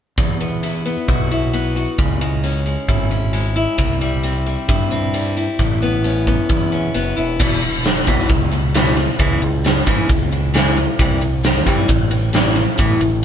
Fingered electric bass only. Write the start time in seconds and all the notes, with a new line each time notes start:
0.18 E2
1.08 B1
1.98 C#2
2.89 G#1
3.78 C2
4.69 G2
5.59 A1
6.50 E2
6.95 F#1
7.18 E1
7.40 E1
8.07 B1
8.29 C#2
9.19 C#2
9.42 C#2
9.87 G#1
10.09 C#2
10.99 C2
11.66 G2
11.89 A1
12.79 A1
13.01 A1